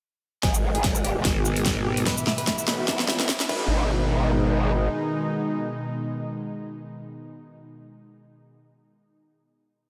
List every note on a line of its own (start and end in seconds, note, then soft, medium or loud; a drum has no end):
0.43 1.23 G#1 medium
0.43 3.46 G#2 medium
0.43 3.46 B2 medium
0.43 2.05 D#3 medium
0.43 3.46 B3 medium
0.43 0.53 G#4 medium
0.43 kick medium
0.43 snare soft
0.43 closed hi-hat medium
0.43 riser medium
0.54 0.62 G#3 medium
0.54 shaker medium
0.64 0.73 G#3 medium
0.75 0.83 G#4 medium
0.75 closed hi-hat soft
0.84 0.94 G#3 medium
0.84 kick medium
0.84 snare soft
0.84 closed hi-hat medium
0.95 1.03 G#3 medium
0.95 shaker medium
1.04 1.14 G4 medium
1.04 closed hi-hat medium
1.16 1.23 G#3 medium
1.25 2.05 G#1 medium
1.25 1.34 G#3 medium
1.25 kick loud
1.25 snare medium
1.25 closed hi-hat medium
1.45 1.55 G#3 medium
1.45 shaker soft
1.56 1.64 G#3 medium
1.56 closed hi-hat soft
1.66 kick medium
1.66 snare medium
1.66 closed hi-hat medium
1.77 1.85 G#3 medium
1.86 1.96 G4 medium
1.97 2.05 G#3 medium
1.97 closed hi-hat medium
2.06 3.48 E3 medium
2.06 2.16 B4 loud
2.06 kick medium
2.06 snare medium
2.06 closed hi-hat medium
2.18 2.25 E4 medium
2.18 shaker medium
2.27 2.36 E4 medium
2.27 snare medium
2.38 2.46 B4 loud
2.38 closed hi-hat medium
2.47 2.57 E4 medium
2.47 kick medium
2.47 snare medium
2.47 closed hi-hat medium
2.58 2.66 E4 medium
2.58 shaker medium
2.68 3.10 B1 medium
2.68 2.77 B4 loud
2.68 snare medium
2.68 closed hi-hat medium
2.79 2.87 E4 medium
2.88 2.98 E4 medium
2.88 kick loud
2.88 snare medium
2.88 closed hi-hat medium
2.99 snare medium
3.08 3.27 A#1 medium
3.08 3.18 E4 medium
3.08 snare loud
3.20 3.28 E4 medium
3.20 snare medium
3.20 closed hi-hat soft
3.29 kick loud
3.29 snare loud
3.29 closed hi-hat medium
3.40 3.48 E4 medium
3.40 snare medium
3.40 shaker medium
3.49 4.88 G#1 loud
3.49 7.64 B2 medium
3.49 7.64 D#3 medium
3.49 7.64 G#3 medium
3.49 7.64 D#4 medium
3.49 7.64 B4 medium
3.49 kick loud
3.49 crash medium